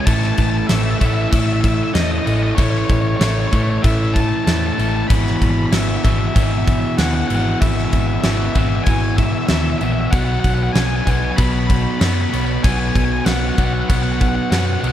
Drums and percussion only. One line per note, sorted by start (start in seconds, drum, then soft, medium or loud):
0.07 kick loud
0.07 crash loud
0.22 snare soft
0.37 kick medium
0.37 crash medium
0.69 snare loud
0.69 crash loud
1.01 kick medium
1.01 crash medium
1.32 kick loud
1.32 crash medium
1.64 kick medium
1.64 crash medium
1.95 snare loud
1.95 crash medium
2.27 crash medium
2.58 kick loud
2.58 crash medium
2.89 kick medium
2.89 crash medium
3.21 snare loud
3.21 crash medium
3.52 kick medium
3.52 crash medium
3.84 kick loud
3.84 crash medium
4.16 kick loud
4.16 crash medium
4.47 snare loud
4.47 crash medium
4.79 crash medium
5.10 kick loud
5.10 crash medium
5.26 snare soft
5.42 kick medium
5.42 crash medium
5.73 snare loud
5.73 crash loud
6.05 kick loud
6.05 crash medium
6.36 kick loud
6.36 crash loud
6.67 kick loud
6.67 crash medium
6.98 snare loud
6.98 crash loud
7.30 crash medium
7.62 kick loud
7.62 crash loud
7.78 snare soft
7.93 kick medium
7.93 crash medium
8.24 snare loud
8.24 crash loud
8.55 kick medium
8.55 crash medium
8.86 kick loud
8.86 crash medium
9.18 kick medium
9.18 crash medium
9.48 snare loud
9.48 crash medium
9.81 crash medium
10.12 kick loud
10.12 crash medium
10.44 kick medium
10.44 crash medium
10.76 snare loud
10.76 crash medium
11.07 kick medium
11.07 crash medium
11.38 kick loud
11.38 crash medium
11.70 kick loud
11.70 crash medium
12.01 snare loud
12.01 crash loud
12.33 crash medium
12.64 kick loud
12.64 crash loud
12.95 kick medium
12.95 crash medium
13.26 snare loud
13.26 crash loud
13.58 kick medium
13.58 crash medium
13.90 kick loud
13.90 crash loud
14.21 kick loud
14.21 crash medium
14.52 snare loud
14.52 crash medium
14.84 crash medium